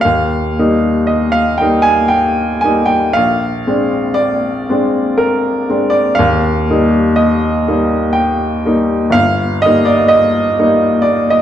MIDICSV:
0, 0, Header, 1, 2, 480
1, 0, Start_track
1, 0, Key_signature, -3, "major"
1, 0, Tempo, 1063830
1, 13, Time_signature, 3, 2, 24, 8
1, 492, Tempo, 1027397
1, 2412, Tempo, 986842
1, 4332, Tempo, 949367
1, 5481, End_track
2, 0, Start_track
2, 0, Title_t, "Upright piano"
2, 0, Program_c, 0, 0
2, 0, Control_c, 0, 64, 127
2, 5, Note_on_c, 0, 77, 99
2, 21, Control_c, 0, 64, 0
2, 21, Note_on_c, 0, 39, 61
2, 104, Control_c, 0, 64, 127
2, 252, Note_off_c, 0, 39, 0
2, 266, Note_on_c, 0, 55, 50
2, 267, Note_on_c, 0, 58, 51
2, 268, Note_on_c, 0, 63, 61
2, 482, Note_on_c, 0, 75, 74
2, 489, Note_off_c, 0, 77, 0
2, 598, Note_on_c, 0, 77, 95
2, 607, Note_off_c, 0, 75, 0
2, 717, Note_off_c, 0, 55, 0
2, 718, Note_off_c, 0, 58, 0
2, 718, Note_off_c, 0, 63, 0
2, 719, Note_on_c, 0, 79, 89
2, 723, Note_off_c, 0, 77, 0
2, 733, Note_on_c, 0, 55, 51
2, 736, Note_on_c, 0, 58, 51
2, 739, Note_on_c, 0, 63, 56
2, 833, Note_on_c, 0, 80, 105
2, 843, Note_off_c, 0, 79, 0
2, 956, Note_on_c, 0, 79, 88
2, 961, Note_off_c, 0, 80, 0
2, 1194, Note_off_c, 0, 55, 0
2, 1196, Note_off_c, 0, 58, 0
2, 1198, Note_off_c, 0, 63, 0
2, 1202, Note_on_c, 0, 80, 87
2, 1205, Note_off_c, 0, 79, 0
2, 1217, Note_on_c, 0, 58, 53
2, 1218, Note_on_c, 0, 55, 46
2, 1220, Note_on_c, 0, 63, 56
2, 1317, Note_on_c, 0, 79, 93
2, 1328, Note_off_c, 0, 80, 0
2, 1436, Note_off_c, 0, 58, 0
2, 1437, Note_off_c, 0, 55, 0
2, 1438, Note_off_c, 0, 63, 0
2, 1444, Note_off_c, 0, 79, 0
2, 1447, Note_on_c, 0, 77, 98
2, 1459, Control_c, 0, 64, 0
2, 1460, Note_on_c, 0, 34, 65
2, 1548, Control_c, 0, 64, 127
2, 1687, Note_off_c, 0, 34, 0
2, 1698, Note_on_c, 0, 56, 51
2, 1699, Note_on_c, 0, 60, 47
2, 1702, Note_on_c, 0, 62, 54
2, 1918, Note_on_c, 0, 74, 96
2, 1928, Note_off_c, 0, 77, 0
2, 2160, Note_off_c, 0, 56, 0
2, 2160, Note_off_c, 0, 60, 0
2, 2162, Note_off_c, 0, 62, 0
2, 2176, Note_on_c, 0, 56, 55
2, 2178, Note_on_c, 0, 60, 56
2, 2179, Note_on_c, 0, 62, 58
2, 2400, Note_on_c, 0, 70, 88
2, 2405, Note_off_c, 0, 74, 0
2, 2633, Note_off_c, 0, 56, 0
2, 2634, Note_off_c, 0, 60, 0
2, 2635, Note_off_c, 0, 62, 0
2, 2653, Note_on_c, 0, 56, 46
2, 2653, Note_on_c, 0, 60, 49
2, 2656, Note_on_c, 0, 62, 52
2, 2752, Note_on_c, 0, 74, 93
2, 2766, Note_off_c, 0, 70, 0
2, 2874, Note_on_c, 0, 77, 100
2, 2875, Note_off_c, 0, 56, 0
2, 2875, Note_off_c, 0, 60, 0
2, 2877, Note_off_c, 0, 62, 0
2, 2884, Note_off_c, 0, 74, 0
2, 2893, Note_on_c, 0, 39, 74
2, 2903, Control_c, 0, 64, 0
2, 2981, Control_c, 0, 64, 127
2, 3131, Note_off_c, 0, 39, 0
2, 3144, Note_on_c, 0, 55, 57
2, 3144, Note_on_c, 0, 58, 60
2, 3144, Note_on_c, 0, 63, 60
2, 3365, Note_on_c, 0, 75, 88
2, 3369, Note_off_c, 0, 77, 0
2, 3597, Note_off_c, 0, 55, 0
2, 3597, Note_off_c, 0, 58, 0
2, 3597, Note_off_c, 0, 63, 0
2, 3618, Note_on_c, 0, 55, 61
2, 3619, Note_on_c, 0, 58, 53
2, 3620, Note_on_c, 0, 63, 60
2, 3836, Note_on_c, 0, 79, 89
2, 3843, Note_off_c, 0, 75, 0
2, 4072, Note_off_c, 0, 55, 0
2, 4073, Note_off_c, 0, 58, 0
2, 4073, Note_off_c, 0, 63, 0
2, 4092, Note_on_c, 0, 55, 52
2, 4097, Note_on_c, 0, 58, 54
2, 4098, Note_on_c, 0, 63, 61
2, 4309, Note_on_c, 0, 31, 74
2, 4313, Note_off_c, 0, 55, 0
2, 4315, Note_off_c, 0, 58, 0
2, 4316, Note_off_c, 0, 63, 0
2, 4320, Note_on_c, 0, 77, 109
2, 4324, Note_off_c, 0, 79, 0
2, 4340, Control_c, 0, 64, 0
2, 4432, Control_c, 0, 64, 127
2, 4558, Note_off_c, 0, 31, 0
2, 4570, Note_on_c, 0, 75, 106
2, 4571, Note_off_c, 0, 77, 0
2, 4589, Note_on_c, 0, 55, 60
2, 4589, Note_on_c, 0, 58, 57
2, 4595, Note_on_c, 0, 63, 59
2, 4688, Note_on_c, 0, 74, 92
2, 4694, Note_off_c, 0, 75, 0
2, 4805, Note_on_c, 0, 75, 102
2, 4811, Note_off_c, 0, 74, 0
2, 5037, Note_off_c, 0, 55, 0
2, 5037, Note_off_c, 0, 58, 0
2, 5040, Note_off_c, 0, 63, 0
2, 5062, Note_on_c, 0, 58, 58
2, 5064, Note_on_c, 0, 55, 53
2, 5065, Note_on_c, 0, 63, 59
2, 5278, Note_on_c, 0, 74, 88
2, 5284, Note_off_c, 0, 75, 0
2, 5422, Note_on_c, 0, 75, 87
2, 5429, Note_off_c, 0, 74, 0
2, 5481, Note_off_c, 0, 55, 0
2, 5481, Note_off_c, 0, 58, 0
2, 5481, Note_off_c, 0, 63, 0
2, 5481, Note_off_c, 0, 75, 0
2, 5481, End_track
0, 0, End_of_file